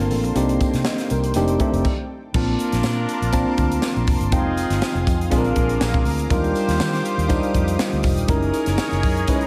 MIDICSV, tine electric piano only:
0, 0, Header, 1, 2, 480
1, 0, Start_track
1, 0, Key_signature, -2, "major"
1, 0, Tempo, 495458
1, 346, Time_signature, 4, 2, 24, 8
1, 9174, End_track
2, 0, Start_track
2, 0, Title_t, "Tine electric piano"
2, 0, Program_c, 0, 4
2, 0, Control_c, 0, 64, 127
2, 0, Note_on_c, 0, 58, 91
2, 0, Note_on_c, 0, 60, 79
2, 0, Note_on_c, 0, 62, 75
2, 0, Note_on_c, 0, 65, 76
2, 0, Note_on_c, 0, 69, 80
2, 0, Note_on_c, 0, 70, 72
2, 0, Note_on_c, 0, 78, 64
2, 112, Note_off_c, 0, 69, 0
2, 112, Note_on_c, 0, 69, 59
2, 198, Note_off_c, 0, 58, 0
2, 200, Note_off_c, 0, 60, 0
2, 203, Note_off_c, 0, 62, 0
2, 203, Note_off_c, 0, 65, 0
2, 339, Note_on_c, 0, 58, 73
2, 344, Note_on_c, 0, 60, 77
2, 345, Note_on_c, 0, 62, 78
2, 352, Note_on_c, 0, 63, 70
2, 354, Note_on_c, 0, 67, 89
2, 359, Control_c, 0, 64, 0
2, 364, Note_off_c, 0, 70, 0
2, 364, Note_off_c, 0, 78, 0
2, 511, Control_c, 0, 64, 127
2, 565, Note_off_c, 0, 69, 0
2, 838, Note_on_c, 0, 75, 61
2, 1061, Note_off_c, 0, 75, 0
2, 1076, Note_on_c, 0, 70, 70
2, 1103, Note_off_c, 0, 58, 0
2, 1105, Note_off_c, 0, 60, 0
2, 1106, Note_off_c, 0, 62, 0
2, 1109, Note_off_c, 0, 63, 0
2, 1110, Note_off_c, 0, 67, 0
2, 1311, Note_on_c, 0, 57, 79
2, 1315, Note_on_c, 0, 60, 84
2, 1317, Control_c, 0, 64, 0
2, 1320, Note_on_c, 0, 63, 80
2, 1321, Note_on_c, 0, 62, 82
2, 1323, Note_on_c, 0, 67, 95
2, 1484, Control_c, 0, 64, 127
2, 1505, Note_off_c, 0, 57, 0
2, 1507, Note_off_c, 0, 60, 0
2, 1509, Note_off_c, 0, 63, 0
2, 1510, Note_off_c, 0, 62, 0
2, 1510, Note_off_c, 0, 67, 0
2, 1528, Note_off_c, 0, 70, 0
2, 1554, Note_on_c, 0, 57, 87
2, 1559, Note_on_c, 0, 60, 75
2, 1561, Note_on_c, 0, 62, 79
2, 1564, Note_on_c, 0, 63, 72
2, 1564, Note_on_c, 0, 67, 92
2, 1791, Note_off_c, 0, 57, 0
2, 1793, Note_off_c, 0, 60, 0
2, 1794, Note_off_c, 0, 62, 0
2, 1795, Note_off_c, 0, 63, 0
2, 1795, Note_off_c, 0, 67, 0
2, 1799, Control_c, 0, 64, 0
2, 2272, Note_on_c, 0, 58, 82
2, 2280, Note_on_c, 0, 60, 69
2, 2280, Note_on_c, 0, 62, 66
2, 2281, Note_on_c, 0, 65, 76
2, 2286, Note_on_c, 0, 81, 81
2, 2440, Control_c, 0, 64, 127
2, 3030, Note_off_c, 0, 58, 0
2, 3034, Note_off_c, 0, 60, 0
2, 3034, Note_off_c, 0, 62, 0
2, 3034, Note_off_c, 0, 65, 0
2, 3036, Note_off_c, 0, 81, 0
2, 3218, Note_on_c, 0, 58, 81
2, 3222, Note_on_c, 0, 60, 83
2, 3225, Note_on_c, 0, 62, 82
2, 3229, Note_on_c, 0, 65, 78
2, 3231, Note_on_c, 0, 81, 101
2, 3983, Note_off_c, 0, 58, 0
2, 3985, Note_off_c, 0, 60, 0
2, 3986, Note_off_c, 0, 62, 0
2, 3988, Note_off_c, 0, 65, 0
2, 3989, Note_off_c, 0, 81, 0
2, 4181, Note_on_c, 0, 56, 70
2, 4186, Note_on_c, 0, 60, 68
2, 4187, Note_on_c, 0, 63, 73
2, 4190, Note_on_c, 0, 65, 74
2, 4190, Note_on_c, 0, 79, 87
2, 4198, Control_c, 0, 64, 0
2, 4348, Control_c, 0, 64, 127
2, 4944, Note_off_c, 0, 56, 0
2, 4947, Note_off_c, 0, 60, 0
2, 4947, Note_off_c, 0, 63, 0
2, 4949, Note_off_c, 0, 65, 0
2, 4949, Note_off_c, 0, 79, 0
2, 5135, Note_on_c, 0, 56, 88
2, 5139, Note_on_c, 0, 60, 68
2, 5141, Note_on_c, 0, 62, 86
2, 5146, Note_on_c, 0, 65, 79
2, 5151, Note_on_c, 0, 68, 78
2, 5163, Control_c, 0, 64, 0
2, 5210, Note_on_c, 0, 70, 96
2, 5212, Note_off_c, 0, 68, 0
2, 5320, Control_c, 0, 64, 127
2, 5901, Note_off_c, 0, 56, 0
2, 5903, Note_off_c, 0, 60, 0
2, 5904, Note_off_c, 0, 62, 0
2, 5907, Note_off_c, 0, 65, 0
2, 5939, Note_off_c, 0, 70, 0
2, 6103, Note_on_c, 0, 54, 62
2, 6107, Note_on_c, 0, 62, 72
2, 6109, Note_on_c, 0, 63, 67
2, 6114, Note_on_c, 0, 70, 89
2, 6115, Note_on_c, 0, 65, 73
2, 6122, Control_c, 0, 64, 0
2, 6160, Note_on_c, 0, 55, 87
2, 6168, Note_off_c, 0, 54, 0
2, 6307, Control_c, 0, 64, 127
2, 6867, Note_off_c, 0, 62, 0
2, 6868, Note_off_c, 0, 63, 0
2, 6871, Note_off_c, 0, 65, 0
2, 6871, Note_off_c, 0, 70, 0
2, 6894, Note_off_c, 0, 55, 0
2, 7056, Note_on_c, 0, 55, 81
2, 7058, Note_on_c, 0, 62, 80
2, 7063, Note_on_c, 0, 63, 83
2, 7069, Note_on_c, 0, 65, 76
2, 7070, Note_on_c, 0, 72, 86
2, 7822, Note_off_c, 0, 55, 0
2, 7823, Note_off_c, 0, 62, 0
2, 7825, Note_off_c, 0, 63, 0
2, 7828, Note_off_c, 0, 65, 0
2, 7829, Note_off_c, 0, 72, 0
2, 8020, Note_on_c, 0, 56, 78
2, 8027, Note_on_c, 0, 61, 69
2, 8029, Note_on_c, 0, 64, 76
2, 8031, Note_on_c, 0, 63, 71
2, 8037, Note_on_c, 0, 70, 91
2, 8039, Control_c, 0, 64, 0
2, 8186, Control_c, 0, 64, 127
2, 8784, Note_off_c, 0, 56, 0
2, 8787, Note_off_c, 0, 61, 0
2, 8788, Note_off_c, 0, 64, 0
2, 8789, Note_off_c, 0, 63, 0
2, 8792, Note_off_c, 0, 70, 0
2, 8992, Note_on_c, 0, 56, 88
2, 8995, Note_on_c, 0, 61, 71
2, 8998, Note_on_c, 0, 63, 70
2, 8999, Note_on_c, 0, 64, 73
2, 9004, Note_on_c, 0, 71, 74
2, 9058, Note_off_c, 0, 71, 0
2, 9064, Note_on_c, 0, 73, 82
2, 9174, Note_off_c, 0, 56, 0
2, 9174, Note_off_c, 0, 61, 0
2, 9174, Note_off_c, 0, 63, 0
2, 9174, Note_off_c, 0, 64, 0
2, 9174, Note_off_c, 0, 73, 0
2, 9174, End_track
0, 0, End_of_file